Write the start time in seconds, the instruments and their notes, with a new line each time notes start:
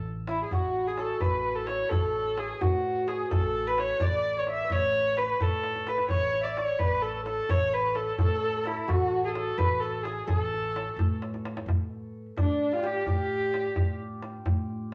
Already playing: upright bass A1
0.05 tombak ka
0.27 santur E4, kamancheh E4, tombak tek
0.44 kamancheh G#4
0.51 upright bass A1, santur F#4, kamancheh F#4, tombak dum
0.74 tombak ka
0.87 kamancheh G#4, santur G#4
0.98 santur A4, kamancheh A4, tombak tek
1.20 upright bass A1, kamancheh B4, santur B4, tombak dum
1.55 kamancheh A4
1.67 kamancheh C#5, santur C#5, tombak tek
1.90 upright bass A1, kamancheh A4, santur A4, tombak dum
2.15 tombak ka
2.37 kamancheh G#4, tombak tek
2.61 upright bass A2, santur F#4, kamancheh F#4, tombak dum
3.07 santur G#4, kamancheh G#4, tombak tek
3.31 upright bass A1, santur A4, kamancheh A4, tombak dum
3.67 santur B4, kamancheh B4
3.78 kamancheh C#5, tombak tek
4.00 upright bass A1, santur D5, kamancheh D5, tombak dum
4.37 santur C#5, kamancheh C#5
4.47 tombak tek
4.51 kamancheh E5
4.64 santur B4
4.70 upright bass A1, santur C#5, kamancheh C#5, tombak dum
4.93 tombak ka
5.17 kamancheh B4, santur B4, tombak tek
5.40 upright bass A2, santur A4, kamancheh A4, tombak dum
5.63 tombak tek
5.75 tombak ka
5.87 santur B4, kamancheh B4, tombak tek
5.98 tombak ka
6.09 upright bass A1, kamancheh C#5, santur C#5, tombak dum
6.33 tombak ka
6.41 kamancheh D5 E5, santur D5
6.57 santur C#5, kamancheh C#5, tombak tek
6.79 upright bass A1, kamancheh B4, santur B4, tombak dum
7.02 kamancheh A4, santur A4
7.26 kamancheh A4, santur A4, tombak tek
7.49 upright bass A1, santur C#5, kamancheh C#5, tombak dum
7.73 kamancheh B4, tombak ka
7.95 kamancheh A4, tombak tek
8.18 upright bass A2, kamancheh A4, santur A4, tombak dum
8.27 santur A4
8.35 santur A4
8.42 santur A4
8.50 santur A4
8.56 santur A4
8.63 kamancheh E4, santur A4, tombak tek
8.71 santur A4
8.88 upright bass A1, santur F#4, kamancheh F#4, tombak dum
9.12 tombak ka
9.25 kamancheh G#4 A4
9.29 kamancheh G#4
9.35 kamancheh A4, tombak tek
9.58 upright bass A1, kamancheh B4, santur B4, tombak dum
9.80 kamancheh A4, santur A4
10.03 kamancheh G#4, santur G#4, tombak tek
10.27 upright bass A1, kamancheh G#4, santur A4, tombak dum
10.39 kamancheh A4
10.53 tombak ka
10.76 tombak tek
10.96 upright bass A2, tombak dum
11.22 tombak tek
11.34 tombak ka
11.45 tombak tek
11.57 tombak ka
11.66 upright bass A2, tombak dum
12.37 upright bass A2, santur D4, kamancheh D4, tombak dum
12.60 tombak ka
12.71 santur F4 G4, kamancheh F4
12.77 santur F4
12.83 santur G4, kamancheh G4, tombak tek
13.06 upright bass A2, santur G4, kamancheh G4, tombak dum
13.30 tombak ka
13.54 tombak tek
13.76 upright bass A2, tombak dum
14.00 tombak ka
14.22 tombak tek
14.45 upright bass A2, tombak dum
14.69 tombak ka